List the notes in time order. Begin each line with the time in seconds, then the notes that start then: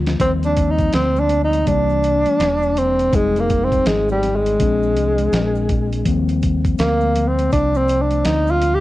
Already playing: D2 F3 G3 A#3 F4
0.07 snare, closed hi-hat, maracas
0.19 D#2 F3 G3 A#3 C4, kick, closed hi-hat, maracas
0.43 D4, closed hi-hat, maracas
0.57 kick, closed hi-hat, maracas
0.70 D#4
0.78 kick, closed hi-hat, maracas
0.93 D2 C4, snare, closed hi-hat, low conga, maracas
1.16 D4, high conga, maracas
1.29 closed hi-hat, low conga, maracas
1.44 D#4
1.53 closed hi-hat, high conga, maracas
1.66 C2 E3 G3 A#3 D4, kick, closed hi-hat, maracas
1.89 maracas
2.03 closed hi-hat, maracas
2.26 closed hi-hat, high conga, maracas
2.39 E1, snare, closed hi-hat, maracas
2.62 maracas
2.77 C4, closed hi-hat, low conga, maracas
2.99 closed hi-hat, maracas
3.12 F1 G3 G#3 C4 D#4, kick, closed hi-hat, maracas
3.36 A#3, closed hi-hat, maracas
3.49 kick, closed hi-hat, maracas
3.64 C4
3.72 kick, closed hi-hat, maracas
3.86 G#1 G#3, snare, closed hi-hat, low conga, maracas
4.09 G3, high conga, maracas
4.23 snare, closed hi-hat, low conga, maracas
4.36 G#3
4.46 closed hi-hat, high conga, maracas
4.58 A#1 F3 G#3 C4 D4, kick, closed hi-hat, maracas
4.83 maracas
4.95 C2, closed hi-hat, maracas
5.18 closed hi-hat, high conga, maracas
5.32 A#1, snare, closed hi-hat, maracas
5.55 maracas
5.69 kick, closed hi-hat, low conga, maracas
5.92 closed hi-hat, maracas
6.05 D#2 F3 G3 A#3 C4, kick, closed hi-hat, maracas
6.29 closed hi-hat, maracas
6.42 kick, closed hi-hat, maracas
6.65 kick, closed hi-hat, maracas
6.78 D2 A#3, snare, closed hi-hat, low conga, maracas
7.01 high conga, maracas
7.15 closed hi-hat, low conga, maracas
7.28 C4
7.38 closed hi-hat, high conga, maracas
7.52 C2 D4, kick, closed hi-hat, maracas
7.75 C4, maracas
7.88 closed hi-hat, maracas
8.02 D4
8.11 closed hi-hat, high conga, maracas
8.25 D2 D#4, snare, closed hi-hat, maracas
8.47 F4, maracas
8.62 closed hi-hat, low conga, maracas
8.74 G4